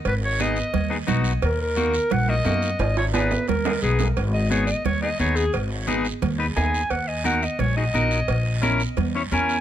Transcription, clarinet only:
X:1
M:4/4
L:1/16
Q:1/4=175
K:G#m
V:1 name="Clarinet"
B2 c2 d6 z6 | A2 A6 f2 d6 | d2 c2 B4 A4 G3 z | z2 d2 c2 d2 c2 d2 c2 G2 |
z12 g4 | f2 d2 f2 d2 c2 d6- | d6 z6 g4 |]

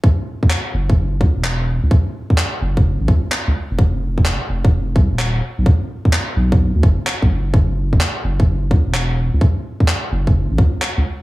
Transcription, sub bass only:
X:1
M:4/4
L:1/16
Q:"Swing 16ths" 1/4=128
K:F#m
V:1 name="Sub bass" clef=bass
z6 F,,,4 C,, E,,,4 C,, | z6 F,,,3 A,,, C,, z2 C,, z =F,,,- | =F,,,4- F,,, z F,,,4 =C,, ^D,,,3 z B,,, | z6 B,,,3 D,, F,,, z2 B,,, F,,,2- |
F,,,4 z2 F,,,4 C,, E,,,4 C,, | z6 F,,,3 A,,, C,, z2 C,, z2 |]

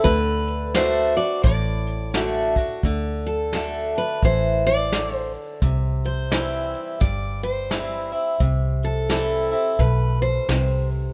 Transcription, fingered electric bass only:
X:1
M:4/4
L:1/8
Q:"Swing" 1/4=86
K:Dmix
V:1 name="Fingered electric bass" clef=bass
D,,4 A,,,4 | D,,4 A,,,4 | C,,4 G,,,4 | C,,4 B,,,2 C,,2 |]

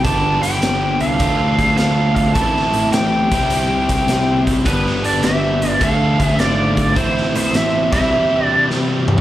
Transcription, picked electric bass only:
X:1
M:4/4
L:1/8
Q:"Swing" 1/4=104
K:C
V:1 name="Picked electric bass" clef=bass
G,,, G,,, G,,, C,, D,, D,, D,,2 | A,,, A,,, A,,, C,, C,, C,, C,, ^F,,, | G,,, G,,, G,,, G,,, D,, D,, ^G,,,2 | A,,, A,,, A,,, C,, z4 |]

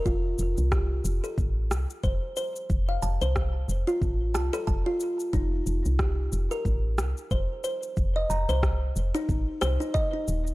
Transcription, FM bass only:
X:1
M:4/4
L:1/16
Q:"Swing 16ths" 1/4=91
K:Fmix
V:1 name="FM bass" clef=bass
F,,,2 F,,, C,,3 F,,, z A,,,2 C,, z F,,, z3 | F,,,2 F,,, C,,3 F,,, z A,,,2 C,, z F,,, z3 | F,,,2 F,,, C,,3 F,,, z A,,,2 C,, z F,,, z3 | F,,,2 F,,, C,,3 F,,, z A,,, z C,, z3 E,,,2 |]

